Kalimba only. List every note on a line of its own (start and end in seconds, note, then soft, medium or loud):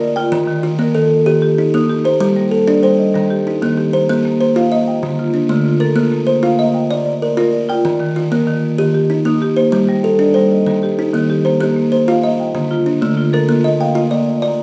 0.00 0.16 F4 medium
0.00 0.17 A#4 medium
0.16 0.48 G5 medium
0.32 0.63 D#3 loud
0.63 1.10 F4 medium
0.79 1.10 A#3 medium
0.95 1.42 A4 medium
1.26 1.58 G4 medium
1.58 2.05 D#4 medium
1.74 2.05 A#3 medium
2.05 2.36 C5 medium
2.20 2.52 G3 loud
2.51 2.99 A4 medium
2.68 2.99 D4 medium
2.83 3.30 C5 medium
3.15 3.46 D#3 medium
3.47 3.93 D#4 medium
3.62 3.93 A#3 medium
3.93 4.24 C5 medium
4.09 4.40 A#3 loud
4.41 4.87 C5 medium
4.56 4.87 F4 medium
4.72 5.18 D#5 medium
5.03 5.34 D3 medium
5.34 5.81 D4 medium
5.49 5.81 A3 medium
5.80 6.12 A#4 medium
5.96 6.27 A#3 loud
6.27 6.74 C5 medium
6.43 6.75 F4 medium
6.59 7.06 D#5 medium
6.91 7.22 D5 medium
7.22 7.69 A#4 medium
7.37 7.69 F4 medium
7.70 8.01 G5 medium
7.85 8.16 D#3 medium
8.16 8.63 F4 medium
8.32 8.63 A#3 medium
8.78 9.10 G4 medium
9.10 9.57 D#4 medium
9.25 9.57 A#3 medium
9.57 9.88 C5 medium
9.72 10.04 G3 medium
10.04 10.51 A4 medium
10.19 10.51 D4 medium
10.34 10.82 C5 medium
10.67 10.98 D#3 medium
10.99 11.45 D#4 medium
11.14 11.45 A#3 medium
11.45 11.76 C5 medium
11.61 11.92 A#3 medium
11.92 12.39 C5 medium
12.08 12.39 F4 medium
12.23 12.70 D#5 medium
12.55 12.86 D3 medium
12.86 13.33 D4 medium
13.02 13.33 A3 medium
13.34 13.64 A#4 medium
13.49 13.80 A#3 medium
13.64 14.11 D#5 medium
13.81 14.27 G5 medium
13.95 14.26 F4 medium
14.11 14.41 D5 medium
14.42 14.63 D5 medium